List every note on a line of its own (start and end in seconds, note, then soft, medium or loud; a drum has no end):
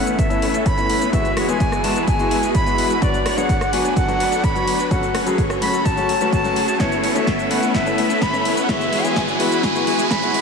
0.00 1.11 A3 medium
0.00 1.11 B3 medium
0.00 1.11 C#4 medium
0.00 0.20 F#5 medium
0.00 riser medium
0.07 0.23 A1 medium
0.07 0.17 A3 medium
0.07 0.17 B3 medium
0.07 0.17 C#4 medium
0.07 0.17 E4 medium
0.07 0.17 B4 medium
0.07 closed hi-hat soft
0.07 shaker medium
0.19 0.39 A3 medium
0.19 0.39 B3 medium
0.19 0.39 C#4 medium
0.19 0.39 E4 medium
0.19 0.39 A4 medium
0.19 0.68 E5 loud
0.19 kick loud
0.19 closed hi-hat medium
0.19 shaker medium
0.30 0.43 A3 medium
0.30 0.44 B3 medium
0.30 0.44 C#4 medium
0.30 0.44 E4 loud
0.30 closed hi-hat soft
0.30 shaker soft
0.42 0.59 A1 medium
0.42 0.51 A3 medium
0.42 0.51 B3 medium
0.42 0.51 C#4 medium
0.42 0.51 E4 medium
0.42 0.51 B4 loud
0.42 open hi-hat loud
0.54 0.63 A3 loud
0.54 0.63 B3 medium
0.54 0.63 C#4 medium
0.54 0.63 E4 medium
0.54 0.63 A4 loud
0.54 closed hi-hat soft
0.54 shaker medium
0.66 0.87 A3 medium
0.66 0.87 B3 medium
0.66 0.87 C#4 medium
0.66 0.87 C#5 medium
0.66 1.13 B5 loud
0.66 kick loud
0.66 closed hi-hat medium
0.66 shaker medium
0.77 0.99 A3 medium
0.77 0.99 B3 medium
0.77 0.99 C#4 medium
0.77 0.99 E4 medium
0.77 closed hi-hat soft
0.77 shaker soft
0.90 1.06 A1 medium
0.90 0.98 A3 medium
0.90 0.98 B3 medium
0.90 0.98 C#4 medium
0.90 0.98 E4 medium
0.90 0.98 B4 medium
0.90 open hi-hat loud
1.01 1.10 A3 medium
1.01 1.10 B3 medium
1.01 1.10 C#4 medium
1.01 1.10 E4 medium
1.01 1.10 B4 loud
1.01 closed hi-hat soft
1.01 shaker medium
1.12 3.00 E3 medium
1.12 1.26 G#3 medium
1.12 1.30 G#3 medium
1.12 1.26 B3 medium
1.12 1.30 B3 medium
1.12 3.00 E4 medium
1.12 1.27 E4 medium
1.12 3.00 F#4 medium
1.12 1.30 F#4 medium
1.12 1.27 F#4 loud
1.12 3.00 G#4 medium
1.12 3.00 B4 medium
1.12 1.30 B4 loud
1.12 1.46 E5 loud
1.12 kick loud
1.12 closed hi-hat medium
1.12 shaker medium
1.25 closed hi-hat soft
1.25 shaker soft
1.37 1.53 E2 medium
1.37 1.47 G#3 medium
1.37 1.47 B3 medium
1.37 1.47 E4 medium
1.37 1.47 F#4 medium
1.37 1.47 C#5 medium
1.37 cross-stick medium
1.37 open hi-hat loud
1.48 1.62 G#3 medium
1.48 1.58 G#3 medium
1.48 1.62 B3 medium
1.48 1.58 B3 medium
1.48 1.58 E4 medium
1.48 1.62 E4 medium
1.48 1.58 F#4 medium
1.48 1.62 G#4 medium
1.48 1.58 C#5 medium
1.48 1.86 G#5 loud
1.48 closed hi-hat soft
1.48 shaker medium
1.60 1.81 G#3 medium
1.60 1.81 B3 medium
1.60 1.81 E4 medium
1.60 1.81 F#4 medium
1.60 1.81 D5 medium
1.60 kick loud
1.60 closed hi-hat medium
1.60 shaker soft
1.72 cross-stick medium
1.72 closed hi-hat soft
1.72 shaker soft
1.83 1.92 E2 medium
1.83 1.97 G#3 medium
1.83 1.94 G#3 medium
1.83 1.97 B3 medium
1.83 1.94 B3 medium
1.83 1.94 E4 medium
1.83 1.97 E4 medium
1.83 1.94 F#4 medium
1.83 1.98 F#4 medium
1.83 1.94 B4 medium
1.83 2.07 A5 loud
1.83 open hi-hat loud
1.96 2.12 E2 medium
1.96 2.06 G#3 medium
1.96 2.06 B3 medium
1.96 2.06 E4 medium
1.96 2.06 F#4 medium
1.96 2.06 B4 medium
1.96 closed hi-hat soft
1.96 shaker medium
2.08 2.28 G#3 medium
2.08 2.28 B3 medium
2.08 2.28 E4 medium
2.08 2.28 F#4 medium
2.08 2.28 G#4 medium
2.08 2.52 G#5 loud
2.08 kick loud
2.08 closed hi-hat medium
2.08 shaker medium
2.19 2.33 G#3 medium
2.19 2.33 B3 medium
2.19 2.33 E4 medium
2.19 2.33 F#4 loud
2.19 closed hi-hat soft
2.19 shaker soft
2.31 2.48 E2 medium
2.31 2.40 G#3 loud
2.31 2.40 B3 medium
2.31 2.40 E4 medium
2.31 2.40 F#4 medium
2.31 2.40 B4 loud
2.31 open hi-hat loud
2.43 2.52 G#3 loud
2.43 2.52 B3 loud
2.43 2.52 E4 loud
2.43 2.52 F#4 medium
2.43 2.52 G#4 loud
2.43 closed hi-hat soft
2.43 shaker medium
2.55 2.76 G#3 medium
2.55 2.76 B3 medium
2.55 2.76 E4 medium
2.55 2.76 F#4 medium
2.55 2.76 C#5 medium
2.55 3.04 B5 loud
2.55 kick loud
2.55 closed hi-hat medium
2.55 shaker medium
2.66 2.88 G#3 medium
2.66 2.88 B3 medium
2.66 2.88 E4 medium
2.66 2.88 F#4 medium
2.66 closed hi-hat soft
2.66 shaker soft
2.78 2.95 E2 medium
2.78 2.87 G#3 medium
2.78 2.87 B3 medium
2.78 2.87 E4 medium
2.78 2.87 F#4 medium
2.78 2.87 B4 medium
2.78 open hi-hat loud
2.90 2.99 G#3 medium
2.90 2.99 B3 medium
2.90 2.99 E4 medium
2.90 2.99 F#4 medium
2.90 2.99 B4 loud
2.90 closed hi-hat soft
2.90 shaker medium
3.01 3.15 F#3 medium
3.01 6.76 F#3 medium
3.01 3.15 B3 medium
3.01 4.89 B3 medium
3.01 3.19 D4 medium
3.01 4.89 D4 medium
3.01 3.16 D4 medium
3.01 3.19 F#4 medium
3.01 3.16 F#4 loud
3.01 3.19 B4 loud
3.01 3.39 D5 loud
3.01 kick loud
3.01 closed hi-hat medium
3.01 shaker medium
3.14 closed hi-hat soft
3.14 shaker soft
3.26 3.42 D2 loud
3.26 3.36 D4 medium
3.26 3.36 F#4 medium
3.26 3.36 C#5 loud
3.26 cross-stick medium
3.26 open hi-hat loud
3.37 3.51 F#3 medium
3.37 3.51 B3 medium
3.37 3.46 D4 medium
3.37 3.51 D4 medium
3.37 3.46 F#4 medium
3.37 3.51 G#4 medium
3.37 3.46 C#5 medium
3.37 3.75 F#5 loud
3.37 closed hi-hat soft
3.37 shaker medium
3.49 3.70 D4 medium
3.49 3.70 F#4 medium
3.49 3.70 D5 loud
3.49 kick loud
3.49 closed hi-hat medium
3.49 shaker medium
3.61 cross-stick medium
3.61 closed hi-hat soft
3.61 shaker soft
3.72 3.81 D2 medium
3.72 3.86 F#3 medium
3.72 3.86 B3 medium
3.72 3.83 D4 medium
3.72 3.86 D4 medium
3.72 3.83 F#4 medium
3.72 3.87 F#4 medium
3.72 3.83 B4 medium
3.72 3.96 G#5 medium
3.72 open hi-hat loud
3.85 4.01 D2 medium
3.85 3.95 D4 medium
3.85 3.95 F#4 medium
3.85 3.95 B4 loud
3.85 closed hi-hat soft
3.85 shaker medium
3.96 4.17 D4 medium
3.96 4.17 F#4 medium
3.96 4.17 A4 medium
3.96 4.46 F#5 loud
3.96 kick loud
3.96 closed hi-hat medium
3.96 shaker medium
4.08 4.21 F#3 medium
4.08 4.22 B3 medium
4.08 4.22 D4 medium
4.08 4.22 F#4 loud
4.08 closed hi-hat soft
4.08 shaker soft
4.20 4.37 D2 medium
4.20 4.29 D4 loud
4.20 4.29 F#4 medium
4.20 4.29 B4 loud
4.20 open hi-hat loud
4.32 4.41 D4 loud
4.32 4.41 F#4 medium
4.32 4.41 A4 loud
4.32 closed hi-hat soft
4.32 shaker medium
4.44 4.65 D4 medium
4.44 4.65 F#4 medium
4.44 4.65 C#5 medium
4.44 4.91 B5 loud
4.44 kick loud
4.44 closed hi-hat medium
4.44 shaker medium
4.55 4.77 F#3 medium
4.55 4.77 B3 medium
4.55 4.77 D4 medium
4.55 4.77 F#4 medium
4.55 closed hi-hat soft
4.55 shaker soft
4.67 4.84 D2 medium
4.67 4.76 D4 medium
4.67 4.76 F#4 medium
4.67 4.76 B4 medium
4.67 open hi-hat loud
4.79 4.88 D4 loud
4.79 4.88 F#4 medium
4.79 4.88 B4 loud
4.79 shaker medium
4.90 5.04 F#3 loud
4.90 5.04 A3 medium
4.90 8.65 A3 medium
4.90 5.08 C#4 medium
4.90 8.65 C#4 medium
4.90 5.05 C#4 medium
4.90 5.05 F#4 loud
4.90 5.08 A4 loud
4.90 5.24 F#5 medium
4.90 kick loud
4.90 closed hi-hat medium
4.90 shaker medium
5.03 closed hi-hat soft
5.03 shaker soft
5.15 5.31 F#1 loud
5.15 5.25 C#4 medium
5.15 5.25 F#4 medium
5.15 5.25 B4 loud
5.15 cross-stick medium
5.15 open hi-hat loud
5.26 5.40 F#3 medium
5.26 5.40 A3 medium
5.26 5.35 C#4 medium
5.26 5.40 C#4 medium
5.26 5.35 F#4 medium
5.26 5.40 G#4 medium
5.26 5.35 B4 medium
5.26 closed hi-hat soft
5.26 shaker medium
5.38 5.59 C#4 medium
5.38 5.59 F#4 medium
5.38 5.59 C#5 medium
5.38 kick loud
5.38 closed hi-hat medium
5.38 shaker medium
5.50 cross-stick medium
5.50 closed hi-hat soft
5.50 shaker soft
5.61 5.70 F#1 loud
5.61 5.75 F#3 medium
5.61 5.75 A3 medium
5.61 5.72 C#4 medium
5.61 5.75 C#4 medium
5.61 5.72 F#4 medium
5.61 5.76 F#4 medium
5.61 5.72 A4 medium
5.61 5.87 B5 loud
5.61 open hi-hat loud
5.74 5.90 F#1 medium
5.74 5.84 C#4 medium
5.74 5.84 F#4 medium
5.74 5.84 A4 medium
5.74 closed hi-hat soft
5.74 shaker medium
5.85 6.06 C#4 medium
5.85 6.06 F#4 medium
5.85 6.06 G#4 medium
5.85 6.32 A5 loud
5.85 kick loud
5.85 closed hi-hat medium
5.85 shaker medium
5.97 6.10 F#3 medium
5.97 6.11 A3 medium
5.97 6.11 C#4 medium
5.97 6.11 F#4 loud
5.97 closed hi-hat soft
5.97 shaker soft
6.09 6.26 F#1 medium
6.09 open hi-hat loud
6.20 6.41 F#3 loud
6.20 6.42 A3 medium
6.20 6.42 C#4 medium
6.20 6.42 F#4 medium
6.20 6.42 F#4 loud
6.20 6.42 B4 loud
6.20 closed hi-hat soft
6.20 shaker medium
6.33 6.82 A5 loud
6.33 kick loud
6.33 closed hi-hat medium
6.33 shaker soft
6.44 6.58 F#3 medium
6.44 6.58 A3 medium
6.44 6.54 C#4 loud
6.44 6.58 C#4 medium
6.44 6.54 F#4 medium
6.44 6.58 F#4 loud
6.44 6.54 B4 loud
6.44 closed hi-hat soft
6.44 shaker soft
6.56 6.73 F#1 medium
6.56 6.74 C#4 medium
6.56 6.74 F#4 medium
6.56 6.74 G#4 medium
6.56 open hi-hat loud
6.68 closed hi-hat soft
6.68 shaker medium
6.79 6.93 A3 medium
6.79 6.97 A3 medium
6.79 6.93 B3 medium
6.79 8.67 B3 medium
6.79 6.97 B3 medium
6.79 6.97 C#4 medium
6.79 6.94 C#4 medium
6.79 6.97 E4 medium
6.79 6.94 E4 loud
6.79 6.97 B4 loud
6.79 7.17 C#5 loud
6.79 kick loud
6.79 snare soft
6.79 closed hi-hat medium
6.79 shaker medium
6.92 closed hi-hat soft
6.92 shaker soft
7.03 7.20 A1 loud
7.03 7.14 A3 medium
7.03 7.14 B3 medium
7.03 7.14 C#4 medium
7.03 7.14 E4 medium
7.03 7.14 C#5 loud
7.03 open hi-hat loud
7.15 7.29 A3 medium
7.15 7.24 A3 medium
7.15 7.29 B3 medium
7.15 7.24 B3 medium
7.15 7.24 C#4 medium
7.15 7.29 C#4 medium
7.15 7.24 E4 medium
7.15 7.29 F#4 medium
7.15 7.24 C#5 medium
7.15 7.52 E5 loud
7.15 closed hi-hat soft
7.15 shaker medium
7.27 7.48 A3 medium
7.27 7.48 B3 medium
7.27 7.48 C#4 medium
7.27 7.48 E4 medium
7.27 7.48 E5 loud
7.27 kick loud
7.27 snare soft
7.27 closed hi-hat medium
7.27 shaker medium
7.39 closed hi-hat soft
7.39 shaker soft
7.50 7.59 A1 medium
7.50 7.64 A3 medium
7.50 7.61 A3 medium
7.50 7.64 B3 medium
7.50 7.61 B3 medium
7.50 7.61 C#4 medium
7.50 7.64 C#4 medium
7.50 7.61 E4 medium
7.50 7.65 E4 medium
7.50 7.61 B4 medium
7.50 7.74 F#5 loud
7.50 open hi-hat loud
7.62 7.79 A1 medium
7.62 7.73 A3 medium
7.62 7.73 B3 medium
7.62 7.73 C#4 medium
7.62 7.73 E4 medium
7.62 7.73 B4 medium
7.62 closed hi-hat soft
7.62 shaker medium
7.74 7.95 A3 medium
7.74 7.95 C#4 medium
7.74 7.95 E4 medium
7.74 7.95 A4 loud
7.74 8.23 E5 loud
7.74 kick loud
7.74 snare soft
7.74 closed hi-hat medium
7.74 shaker medium
7.86 7.99 A3 medium
7.86 8.00 B3 medium
7.86 8.00 C#4 medium
7.86 8.00 E4 loud
7.86 closed hi-hat soft
7.86 shaker soft
7.98 8.14 A1 medium
7.98 8.07 A3 loud
7.98 8.07 B3 medium
7.98 8.07 C#4 medium
7.98 8.07 E4 medium
7.98 8.07 B4 loud
7.98 open hi-hat loud
8.10 8.19 A3 loud
8.10 8.19 B3 medium
8.10 8.19 C#4 medium
8.10 8.19 E4 medium
8.10 8.19 A4 loud
8.10 closed hi-hat soft
8.10 shaker medium
8.22 8.42 A3 medium
8.22 8.42 B3 medium
8.22 8.43 C#4 medium
8.22 8.42 E4 medium
8.22 8.61 B5 loud
8.22 kick loud
8.22 snare medium
8.22 closed hi-hat medium
8.22 shaker medium
8.33 8.55 A3 medium
8.33 8.55 B3 medium
8.33 8.55 C#4 medium
8.33 8.55 E4 medium
8.33 closed hi-hat soft
8.33 shaker soft
8.45 8.62 A1 medium
8.45 8.54 A3 medium
8.45 8.54 B3 medium
8.45 8.54 C#4 medium
8.45 8.54 E4 medium
8.45 8.54 B4 medium
8.45 open hi-hat loud
8.57 8.66 A3 medium
8.57 8.66 B3 medium
8.57 8.66 C#4 medium
8.57 8.66 E4 medium
8.57 8.66 B4 loud
8.57 closed hi-hat soft
8.57 shaker medium
8.62 8.71 F#5 medium
8.68 10.41 E3 medium
8.68 8.82 G#3 loud
8.68 8.86 G#3 medium
8.68 8.82 B3 medium
8.68 8.86 B3 medium
8.68 10.41 E4 medium
8.68 8.82 E4 medium
8.68 8.86 E4 medium
8.68 10.41 F#4 medium
8.68 8.86 F#4 medium
8.68 8.83 F#4 loud
8.68 10.41 G#4 medium
8.68 10.41 B4 medium
8.68 8.86 B4 loud
8.68 9.06 E5 loud
8.68 kick loud
8.68 snare medium
8.68 closed hi-hat medium
8.68 shaker medium
8.81 closed hi-hat soft
8.81 shaker soft
8.92 9.09 E2 loud
8.92 9.03 G#3 medium
8.92 9.03 B3 medium
8.92 9.03 E4 medium
8.92 9.03 F#4 medium
8.92 9.03 C#5 loud
8.92 open hi-hat loud
9.04 9.17 G#3 medium
9.04 9.13 G#3 medium
9.04 9.18 B3 medium
9.04 9.13 B3 medium
9.04 9.13 E4 medium
9.04 9.18 E4 medium
9.04 9.13 F#4 medium
9.04 9.18 G#4 medium
9.04 9.13 C#5 medium
9.04 9.39 G#5 loud
9.04 closed hi-hat soft
9.04 shaker medium
9.16 9.37 G#3 medium
9.16 9.37 B3 medium
9.16 9.37 E4 medium
9.16 9.37 F#4 medium
9.16 9.37 D5 medium
9.16 kick loud
9.16 snare medium
9.16 closed hi-hat medium
9.16 shaker medium
9.28 closed hi-hat soft
9.28 shaker soft
9.39 9.48 E2 medium
9.39 9.53 G#3 medium
9.39 9.50 G#3 medium
9.39 9.53 B3 medium
9.39 9.50 B3 medium
9.39 9.50 E4 medium
9.39 9.53 E4 medium
9.39 9.50 F#4 medium
9.39 9.53 F#4 medium
9.39 9.50 B4 medium
9.39 9.65 B5 loud
9.39 open hi-hat loud
9.51 9.68 E2 medium
9.51 9.62 G#3 medium
9.51 9.62 B3 medium
9.51 9.62 E4 medium
9.51 9.62 F#4 medium
9.51 9.62 B4 loud
9.51 closed hi-hat soft
9.51 shaker medium
9.63 9.84 G#3 medium
9.63 9.84 B3 medium
9.63 9.84 E4 medium
9.63 9.84 F#4 medium
9.63 9.84 G#4 loud
9.63 10.12 G#5 loud
9.63 kick loud
9.63 snare medium
9.63 closed hi-hat medium
9.63 shaker medium
9.75 9.88 G#3 medium
9.75 9.89 B3 medium
9.75 9.89 E4 medium
9.75 9.89 F#4 loud
9.75 closed hi-hat soft
9.75 shaker soft
9.87 10.03 E2 medium
9.87 9.96 G#3 medium
9.87 9.96 B3 medium
9.87 9.96 E4 medium
9.87 9.96 F#4 medium
9.87 9.96 B4 loud
9.87 open hi-hat medium
9.99 10.08 G#3 loud
9.99 10.08 B3 medium
9.99 10.08 E4 medium
9.99 10.08 F#4 medium
9.99 10.08 G#4 loud
9.99 closed hi-hat soft
9.99 shaker medium
10.11 10.31 G#3 medium
10.11 10.32 B3 medium
10.11 10.32 E4 medium
10.11 10.31 F#4 medium
10.11 10.32 C#5 medium
10.11 10.41 B5 loud
10.11 kick loud
10.11 snare medium
10.11 closed hi-hat medium
10.11 shaker medium
10.22 10.41 G#3 medium
10.22 10.41 B3 medium
10.22 10.41 E4 medium
10.22 10.41 F#4 medium
10.22 closed hi-hat soft
10.22 shaker soft
10.34 10.41 E2 medium
10.34 10.41 G#3 medium
10.34 10.41 B3 medium
10.34 10.41 E4 medium
10.34 10.41 F#4 medium
10.34 10.41 B4 medium
10.34 open hi-hat loud